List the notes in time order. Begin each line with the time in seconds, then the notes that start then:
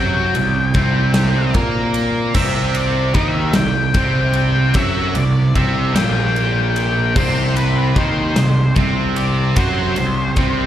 Already playing: F#2 C3 F#3 C4 F#4 G5
0.35 C2 C3, ride
0.74 C2 C3 C4, kick, ride
1.14 snare, ride
1.54 A#2 A#3 A#4, kick, ride
1.94 ride
2.34 C2 C3 C4 E5, kick, crash
2.75 D5, ride
3.14 D#2 D#3 D#4 E5, kick, ride
3.53 C2 C3 G5, snare, ride
3.94 C2 C3 C4, kick, ride
4.33 G5, ride
4.74 F#2 F#3 F#4 E5, kick, ride
5.15 C2 C3 D5, ride
5.55 C2 C3 C4 E5, kick, ride
5.95 A#1 A#2 A#3 G5, snare, ride
6.36 ride
6.76 G5, ride
7.15 C2 C3 C4 C5, kick, crash
7.56 B4, ride
7.96 D#2 D#3 D#4 C5, kick, ride
8.35 C2 C3, snare, ride
8.75 C2 C3 C4, kick, ride
9.16 D5, ride
9.56 F#2 F#3 F#4 C5, kick, ride
9.96 C2 C3, ride
10.36 C2 C3 C4, kick, ride